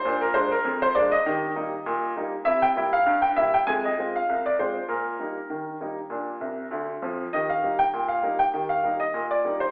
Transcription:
0.00 0.19 C5 medium
0.05 0.30 A#2 medium
0.05 0.23 D4 soft
0.21 0.35 A#4 medium
0.34 0.51 G#3 soft
0.34 0.51 A#3 soft
0.34 0.51 D4 soft
0.34 0.51 C5 medium
0.51 0.75 A#4 medium
0.65 0.90 F2 medium
0.82 0.95 C5 medium
0.95 1.12 G#3 soft
0.95 1.12 A#3 soft
0.95 1.13 D4 medium
0.95 1.12 D5 medium
1.12 2.12 D#5 medium
1.26 1.51 D#3 medium
1.26 1.44 G4 soft
1.56 1.72 G3 soft
1.56 1.72 A#3 soft
1.56 1.73 D#4 medium
1.86 2.11 A#2 medium
2.16 2.33 G3 soft
2.16 2.33 A#3 soft
2.16 2.33 D#4 medium
2.45 2.71 C3 medium
2.45 2.64 E4 medium
2.45 2.62 E5 loud
2.62 2.87 G5 medium
2.76 2.93 G3 soft
2.76 2.93 A#3 soft
2.76 2.93 E4 medium
2.93 3.17 F5 medium
3.06 3.32 G2 medium
3.22 3.36 G5 medium
3.36 3.53 G3 soft
3.36 3.53 A#3 soft
3.36 3.54 E4 soft
3.36 3.53 E5 medium
3.54 3.67 G5 medium
3.67 3.93 F2 medium
3.67 3.85 G#3 soft
3.67 3.84 G#5 medium
3.85 4.13 D#5 medium
3.99 4.15 G#3 soft
3.99 4.15 C4 soft
3.99 4.16 F4 soft
4.16 4.39 F5 medium
4.29 4.54 C2 medium
4.46 4.59 D5 medium
4.59 4.76 G#3 soft
4.59 4.76 C4 soft
4.59 4.76 F4 soft
4.59 4.83 C5 medium
4.88 5.14 A#2 medium
4.88 6.35 A#4 medium
5.19 5.36 G3 soft
5.19 5.36 A#3 soft
5.19 5.37 D#4 soft
5.50 5.75 D#3 medium
5.81 5.97 G3 soft
5.81 5.97 A#3 soft
5.81 5.98 D#4 soft
6.10 6.36 A#2 medium
6.10 6.28 D4 soft
6.41 6.64 C2 medium
6.41 6.64 C3 medium
6.71 6.94 D2 medium
6.71 6.94 D3 medium
7.02 7.25 F2 medium
7.02 7.25 F3 medium
7.33 7.59 D#3 medium
7.33 7.51 G4 soft
7.33 7.49 D#5 medium
7.49 7.78 F5 medium
7.63 7.80 G3 soft
7.63 7.80 A#3 soft
7.63 7.80 D#4 soft
7.79 8.03 G5 medium
7.93 8.19 A#2 medium
8.08 8.38 F5 medium
8.23 8.40 G3 soft
8.23 8.40 A#3 soft
8.23 8.40 D#4 soft
8.39 8.64 G5 medium
8.54 8.79 D#3 medium
8.54 8.72 G4 soft
8.69 8.94 F5 medium
8.83 9.00 G3 soft
8.83 9.01 A#3 soft
8.83 9.01 D#4 soft
9.00 9.24 D#5 medium
9.14 9.40 A#2 medium
9.31 9.55 D5 medium
9.45 9.61 G3 soft
9.45 9.61 A#3 soft
9.45 9.62 D#4 soft
9.60 9.71 C5 medium

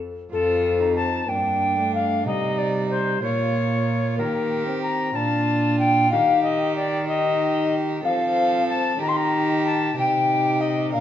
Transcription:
0.00 0.12 F2 medium
0.32 1.25 F2 medium
0.32 1.29 C4 medium
0.32 0.82 F4 medium
0.32 0.93 A4 medium
0.80 1.29 D#4 medium
0.96 1.30 A5 medium
1.28 2.28 G2 medium
1.28 1.78 A#3 medium
1.28 2.28 D4 medium
1.28 1.94 G5 medium
1.77 2.25 A3 medium
1.94 2.26 F5 medium
2.26 3.22 C3 medium
2.26 3.23 G3 medium
2.26 3.22 D#4 medium
2.26 2.59 D#5 medium
2.58 2.89 D5 medium
2.90 3.21 C5 medium
3.21 4.20 A#2 medium
3.21 4.18 A#3 medium
3.21 4.21 F4 medium
3.21 4.17 C#5 medium
4.17 5.15 D#3 medium
4.17 4.66 A#3 medium
4.17 5.15 G4 medium
4.17 4.81 A#4 medium
4.66 5.16 C4 medium
4.82 5.17 A#5 loud
5.15 6.14 A#2 medium
5.15 6.10 D4 medium
5.15 6.14 F4 medium
5.15 5.78 A5 loud
5.79 6.11 G5 medium
6.11 8.04 D#3 medium
6.11 6.78 D#4 medium
6.11 7.06 G4 medium
6.11 6.42 F5 medium
6.43 6.75 D#5 medium
6.75 7.07 D5 medium
7.06 7.99 D#4 medium
7.06 8.01 G4 medium
7.06 7.75 D#5 medium
8.03 8.97 F3 medium
8.03 9.01 C4 medium
8.03 9.01 A4 medium
8.03 8.64 F5 loud
8.69 9.00 A5 loud
9.00 9.95 D#3 medium
9.00 9.96 D#4 medium
9.00 9.95 G4 medium
9.00 9.10 A#5 loud
9.08 9.18 C6 medium
9.16 9.66 A#5 loud
9.66 9.97 A5 loud
9.96 10.95 C3 medium
9.96 10.95 D#4 medium
9.96 10.91 G4 medium
9.96 10.62 G5 loud
10.60 10.92 D#5 medium
10.93 11.00 A#2 medium
10.93 11.00 D4 medium
10.93 11.00 A#4 medium
10.93 11.00 F5 loud

